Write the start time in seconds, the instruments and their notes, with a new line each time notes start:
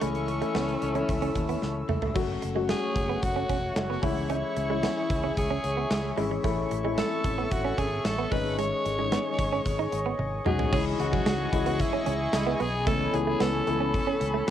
Already playing: analog synth pad C#6
0.01 fretless electric bass C#2, grand piano E3 A3 C#4 E4, clean electric guitar A3, alto saxophone C#4, analog synth pad A4 E5 E6, closed hi-hat
0.15 closed hi-hat
0.28 muted clean electric guitar stroke, closed hi-hat
0.41 grand piano E3 A3 C#4 E4, clean electric guitar A3, closed hi-hat
0.55 fretless electric bass C#2, clean electric guitar B3, snare
0.69 closed hi-hat
0.82 fretless electric bass C#2, muted clean electric guitar stroke, closed hi-hat
0.94 grand piano E3 A3 C#4 E4, clean electric guitar C#4, closed hi-hat
1.08 fretless electric bass C#2, kick, closed hi-hat
1.22 clean electric guitar C#4, closed hi-hat
1.35 fretless electric bass D#2, muted clean electric guitar stroke, kick, closed hi-hat
1.49 clean electric guitar B3, closed hi-hat
1.62 fretless electric bass C#2, muted clean electric guitar stroke, snare
1.89 fretless electric bass C#2, clean electric guitar A3, mid tom
2.02 clean electric guitar A3, floor tom
2.15 fretless electric bass F#1, grand piano F#3 A3 C#4 F#4, clean electric guitar F#3, analog synth pad A3 C#5 F#5 C#6, kick, crash
2.42 fretless electric bass F#1, muted clean electric guitar stroke, closed hi-hat
2.55 grand piano F#3 A3 C#4 F#4, clean electric guitar G#3
2.69 clean electric guitar A3, alto saxophone G#4, snare, closed hi-hat
2.96 fretless electric bass F#1, muted clean electric guitar stroke, kick, closed hi-hat
3.09 clean electric guitar B3
3.23 fretless electric bass F#1, alto saxophone F#4, muted clean electric guitar stroke, kick, closed hi-hat
3.36 clean electric guitar C#4
3.50 fretless electric bass E1, clean electric guitar C#4, kick, closed hi-hat
3.76 fretless electric bass F#1, alto saxophone F#4, muted clean electric guitar stroke, snare, closed hi-hat
3.90 clean electric guitar B3
4.02 fretless electric bass C#2, grand piano E3 G#3 C#4 E4, clean electric guitar C#4, alto saxophone E4, analog synth pad G#4 E5 C#6, kick, open hi-hat
4.30 clean electric guitar C#4, alto saxophone E4, closed hi-hat
4.57 fretless electric bass C#2, muted clean electric guitar stroke, closed hi-hat
4.70 grand piano E3 G#3 C#4 E4, clean electric guitar G#3
4.83 clean electric guitar B3, snare, closed hi-hat
5.10 fretless electric bass C#2, muted clean electric guitar stroke, kick, closed hi-hat
5.24 clean electric guitar C#4
5.37 fretless electric bass C#2, alto saxophone G#4, kick, closed hi-hat
5.51 clean electric guitar C#4
5.64 fretless electric bass C#2, muted clean electric guitar stroke, closed hi-hat
5.77 clean electric guitar B3
5.91 fretless electric bass C#2, muted clean electric guitar stroke, snare, closed hi-hat
6.17 fretless electric bass G#1, grand piano E3 G#3 C#4 E4, clean electric guitar G#3, open hi-hat
6.31 clean electric guitar G#3
6.44 fretless electric bass A1, grand piano E3 A3 C#4 E4, clean electric guitar A3, analog synth pad A4 C#6, kick, closed hi-hat
6.71 fretless electric bass A1, muted clean electric guitar stroke, closed hi-hat
6.84 grand piano E3 A3 C4 E4, clean electric guitar G#3
6.91 grand piano C#4
6.98 clean electric guitar A3, alto saxophone A4, snare, closed hi-hat
7.24 fretless electric bass A1, muted clean electric guitar stroke, kick, closed hi-hat
7.38 clean electric guitar B3
7.51 fretless electric bass A1, alto saxophone F#4, muted clean electric guitar stroke, kick, closed hi-hat
7.65 clean electric guitar C#4
7.78 fretless electric bass G#1, clean electric guitar C#4, alto saxophone G#4, kick, closed hi-hat
8.05 fretless electric bass A1, alto saxophone A4, muted clean electric guitar stroke, snare, closed hi-hat
8.19 clean electric guitar B3
8.31 fretless electric bass G#1, grand piano D#3 G#3 C#4 D#4, clean electric guitar G#3, analog synth pad G#4 C#5 D#5 C#6, alto saxophone B4, kick, open hi-hat
8.58 clean electric guitar G#3, alto saxophone C#5, closed hi-hat
8.85 fretless electric bass G#1, muted clean electric guitar stroke, closed hi-hat
8.98 grand piano D#3 G#3 C#4 D#4, clean electric guitar G#3
9.12 clean electric guitar B3, snare, closed hi-hat
9.38 fretless electric bass G#1, muted clean electric guitar stroke, kick, closed hi-hat
9.52 clean electric guitar C#4
9.65 fretless electric bass G#1, kick, closed hi-hat
9.79 clean electric guitar D#4
9.92 fretless electric bass G#1, muted clean electric guitar stroke, closed hi-hat
10.06 clean electric guitar B3
10.19 fretless electric bass G#1, muted clean electric guitar stroke, high tom
10.45 fretless electric bass B1, grand piano D#3 G#3 C#4 F#4, clean electric guitar G#3, alto saxophone G#4, mid tom
10.59 clean electric guitar G#3, floor tom
10.72 fretless electric bass C#2, grand piano E3 G#3 C#4 D#4 E4, clean electric guitar C#4, analog synth pad G#4 D#5 G#5 C#6, alto saxophone G#4, kick, crash
10.99 fretless electric bass C#2, grand piano E3 G#3 C#4 D#4 F#4, alto saxophone F#4, muted clean electric guitar stroke, closed hi-hat
11.13 clean electric guitar F#3, kick
11.26 fretless electric bass C#2, clean electric guitar G#3, snare, closed hi-hat, tambourine
11.52 fretless electric bass C#2, grand piano E3 G#3 C#4 E4 D#5, muted clean electric guitar stroke, kick, closed hi-hat
11.66 clean electric guitar B3, closed hi-hat
11.80 alto saxophone E4, muted clean electric guitar stroke, kick, closed hi-hat
11.94 clean electric guitar C#4
12.07 fretless electric bass C#2, horn section G#3 E4 G#4, clean electric guitar C#4, closed hi-hat
12.33 fretless electric bass C#2, horn section G#3 E4 G#4, muted clean electric guitar stroke, snare, closed hi-hat, tambourine
12.47 clean electric guitar B3
12.60 fretless electric bass B1, clean electric guitar B3, alto saxophone G#4, open hi-hat
12.87 fretless electric bass C#2, grand piano E3 A3 B3 C#4 E4, clean electric guitar A3, analog synth pad A4 C#5 B5, alto saxophone A4, kick, closed hi-hat
13.13 fretless electric bass C#2, grand piano E3 A3 B3 C#4 E4, alto saxophone G#4, muted clean electric guitar stroke, closed hi-hat
13.27 clean electric guitar A3
13.40 fretless electric bass C#2, clean electric guitar B3, alto saxophone A4, snare, closed hi-hat, tambourine
13.67 fretless electric bass C#2, grand piano E3 A3 B3 C#4 E4, muted clean electric guitar stroke, closed hi-hat
13.81 clean electric guitar C#4
13.94 kick, closed hi-hat
14.07 clean electric guitar C#4
14.21 fretless electric bass C#2, muted clean electric guitar stroke, closed hi-hat
14.34 clean electric guitar A3
14.47 muted clean electric guitar stroke